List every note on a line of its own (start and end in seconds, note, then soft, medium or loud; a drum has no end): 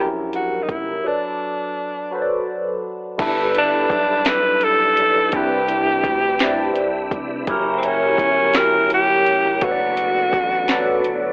0.00 0.66 A#1 loud
0.00 1.04 F#3 medium
0.00 1.07 G3 medium
0.00 1.07 C#4 medium
0.00 1.06 E4 medium
0.00 1.00 G4 medium
0.00 1.06 A#4 medium
0.33 0.64 F#4 medium
0.33 closed hi-hat soft
0.63 0.73 D#4 medium
0.69 1.01 F1 medium
0.69 1.09 E4 medium
0.69 kick medium
0.69 closed hi-hat soft
1.04 2.06 F#3 medium
1.04 2.49 D4 medium
1.04 2.06 F#4 medium
1.04 2.07 A4 medium
1.04 2.07 B4 medium
1.04 2.08 D5 medium
2.11 3.13 F#3 medium
2.11 3.14 F#4 medium
2.11 3.14 A4 medium
2.11 3.14 B4 medium
2.15 2.20 C5 medium
2.22 3.18 D5 medium
3.18 3.87 G1 loud
3.18 4.20 G3 medium
3.18 7.45 G3 medium
3.18 4.20 D4 medium
3.18 7.45 D4 medium
3.18 4.21 E4 medium
3.18 5.32 E4 medium
3.18 4.21 A4 medium
3.18 5.32 A4 medium
3.18 5.32 B4 medium
3.18 4.22 B4 loud
3.18 kick loud
3.18 closed hi-hat medium
3.18 crash loud
3.55 4.29 D4 medium
3.55 closed hi-hat medium
3.90 4.23 B1 medium
3.90 kick medium
3.90 closed hi-hat soft
4.25 4.94 B1 loud
4.25 5.27 G3 medium
4.25 5.28 D4 medium
4.25 5.28 E4 medium
4.25 5.29 A4 medium
4.25 4.66 B4 loud
4.25 snare loud
4.25 closed hi-hat medium
4.29 5.29 D5 medium
4.61 5.37 A4 loud
4.61 closed hi-hat soft
4.97 5.31 B1 medium
4.97 closed hi-hat medium
5.32 6.01 C2 loud
5.32 6.34 C3 medium
5.32 7.47 C3 medium
5.32 6.35 C4 medium
5.32 6.35 D4 medium
5.32 7.46 E4 medium
5.32 6.36 E4 medium
5.32 7.13 G4 loud
5.32 7.47 B4 medium
5.32 kick loud
5.32 closed hi-hat medium
5.36 6.36 B4 medium
5.68 closed hi-hat medium
6.04 6.72 D2 medium
6.04 kick medium
6.04 closed hi-hat medium
6.39 7.42 C3 medium
6.39 7.42 C4 medium
6.39 7.43 D4 medium
6.39 7.43 E4 medium
6.39 snare loud
6.39 closed hi-hat medium
6.44 7.44 D5 medium
6.76 7.09 C2 medium
6.76 closed hi-hat medium
7.11 7.44 F1 loud
7.11 kick medium
7.11 closed hi-hat medium
7.47 8.16 F#1 loud
7.47 8.49 F#3 medium
7.47 9.60 F#3 medium
7.47 8.49 C#4 medium
7.47 9.60 C#4 medium
7.47 9.60 E4 medium
7.47 8.50 E4 medium
7.47 9.60 G4 medium
7.47 8.50 G4 medium
7.47 9.60 A#4 medium
7.47 8.51 A#4 loud
7.47 kick loud
7.47 closed hi-hat medium
7.78 7.87 C4 medium
7.83 8.58 C#4 loud
7.83 closed hi-hat medium
8.18 8.51 G1 medium
8.18 kick medium
8.18 closed hi-hat soft
8.54 9.23 G1 loud
8.54 9.56 F#3 medium
8.54 9.56 C#4 medium
8.54 9.57 E4 medium
8.54 9.57 G4 medium
8.54 8.92 A#4 loud
8.54 snare loud
8.54 closed hi-hat medium
8.58 9.58 C#5 medium
8.90 9.65 G4 loud
8.90 closed hi-hat medium
9.27 9.59 F1 medium
9.27 closed hi-hat medium
9.61 10.30 F#1 loud
9.61 10.63 F#3 medium
9.61 11.33 A3 medium
9.61 11.33 B3 medium
9.61 11.33 D4 medium
9.61 10.63 F#4 medium
9.61 11.33 F#4 loud
9.61 10.64 A4 medium
9.61 10.64 B4 medium
9.61 kick loud
9.61 closed hi-hat medium
9.65 9.70 C#5 medium
9.71 10.68 D5 medium
9.97 closed hi-hat medium
10.33 11.01 A1 medium
10.33 kick medium
10.33 closed hi-hat soft
10.68 11.33 F#3 medium
10.68 11.33 F#4 medium
10.68 11.33 A4 medium
10.68 11.33 B4 medium
10.68 11.33 D5 medium
10.68 snare loud
10.68 closed hi-hat medium
11.04 11.33 G1 medium
11.04 closed hi-hat soft